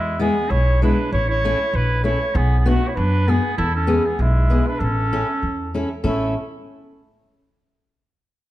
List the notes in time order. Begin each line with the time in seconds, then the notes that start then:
Already playing: E2 G#3 E4
0.19 G#3 B3 E4 G#4
0.49 B1 E4 C#5
0.82 G#3 B3 D4 E4 B4
1.12 A1 E4 C#5
1.28 E4 C#5
1.45 A3 C#4 E4
1.73 A#1 E4 B4
2.04 A3 C#4 E4 C#5
2.34 B1 B3 G#4
2.59 B3 G#4
2.66 A3 B3 D4 F#4
2.88 E4 C#5
2.95 F#2 D4 B4
3.27 B3 D4 F#4 G#4
3.57 E2 E4 A4
3.75 C#4 A4
3.87 B3 E4 G#4
4.05 B3 G#4
4.19 B1 G#3 E4
4.50 B3 E4 G#4
4.67 D4 B4
4.79 A1 A4
4.83 C#4
5.13 C#4 E4 A4
5.43 E2
5.75 C#4 E4 A4
6.04 A1 A3 C#4 E4 A4